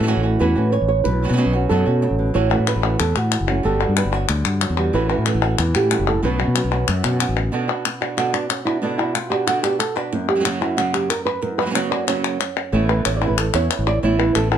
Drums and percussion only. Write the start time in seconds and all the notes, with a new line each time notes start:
2.67 clap
3.00 clap
3.16 clap
3.32 clap
3.97 clap
4.29 clap
4.45 clap
4.61 clap
5.26 clap
5.58 clap
5.75 clap
5.91 clap
6.56 clap
6.88 clap
7.04 clap
7.20 clap
7.85 clap
8.18 clap
8.34 clap
8.50 clap
9.15 clap
9.48 clap
9.64 clap
9.80 clap
10.45 clap
10.78 clap
10.94 clap
11.10 clap
11.75 clap
12.08 clap
12.24 clap
12.41 clap
12.57 clap
13.05 clap
13.38 clap
13.54 clap
13.71 clap
14.35 clap